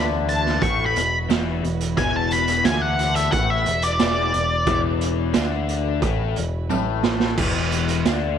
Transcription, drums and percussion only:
0.28 closed hi-hat
0.46 snare
0.62 kick, closed hi-hat
0.96 closed hi-hat
1.30 snare, closed hi-hat, tambourine
1.64 closed hi-hat
1.80 closed hi-hat
1.97 kick, closed hi-hat
2.31 closed hi-hat
2.47 closed hi-hat
2.65 snare, closed hi-hat, tambourine
2.99 closed hi-hat
3.15 closed hi-hat
3.32 kick, closed hi-hat
3.66 closed hi-hat
3.82 closed hi-hat
3.99 snare, closed hi-hat, tambourine
4.34 closed hi-hat
4.66 kick, closed hi-hat
5.01 closed hi-hat
5.34 snare, closed hi-hat, tambourine
5.69 closed hi-hat
6.02 kick, closed hi-hat
6.36 closed hi-hat
6.70 high tom, tambourine
7.03 snare
7.20 snare
7.38 kick, crash, tambourine
7.72 closed hi-hat, tambourine
7.88 closed hi-hat
8.05 snare, closed hi-hat, tambourine

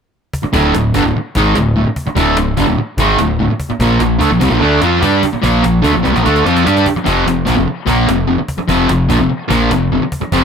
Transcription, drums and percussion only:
0.33 cajon bass
0.54 cajon bass
0.74 cajon slap
0.94 cajon bass
1.35 cajon bass
1.55 cajon slap
1.96 cajon bass
2.17 cajon bass
2.37 cajon slap
2.57 cajon bass
2.98 cajon bass
3.19 cajon slap
3.60 cajon bass
3.70 cajon slap
3.80 cajon bass
4.00 cajon slap
4.21 cajon bass
4.41 cajon bass
4.82 cajon slap
5.03 cajon bass
5.23 cajon bass
5.44 cajon bass
5.64 cajon slap
5.84 cajon bass
6.05 cajon slap
6.16 cajon slap
6.26 cajon slap
6.36 cajon slap
6.46 cajon slap
6.57 cajon slap
6.67 cajon slap
6.77 cajon slap
6.86 cajon bass
6.97 cajon slap
7.06 cajon bass
7.28 cajon slap
7.47 cajon bass
7.87 cajon bass
8.09 cajon slap
8.48 cajon bass
8.69 cajon bass
8.89 cajon slap
9.10 cajon bass
9.50 cajon bass
9.71 cajon slap
10.12 cajon bass
10.32 cajon bass

